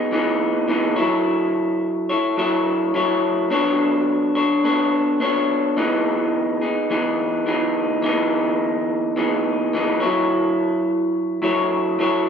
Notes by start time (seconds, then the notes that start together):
Already playing: B3 D#4 G#4
0.12 E3 B3 D#4 G#4
0.68 E3 B3 D#4 G#4
0.96 F#3 E4 A4 C#5
2.09 E4 A4 C#5
2.37 F#3 E4 A4 C#5
2.94 F#3 E4 A4 C#5
3.50 B3 D4 A4 C#5
4.35 D4 A4 C#5
4.64 B3 D4 A4 C#5
5.20 B3 D4 A4 C#5
5.77 E3 B3 D#4 G#4
6.61 B3 D#4 G#4
6.90 E3 B3 D#4 G#4
7.46 E3 B3 D#4 G#4
8.02 E3 B3 D#4 G#4
9.16 E3 B3 D#4 G#4
9.73 E3 B3 D#4 G#4
10.00 F#3 E4 A4 C#5
11.42 F#3 E4 A4 C#5
11.99 F#3 E4 A4 C#5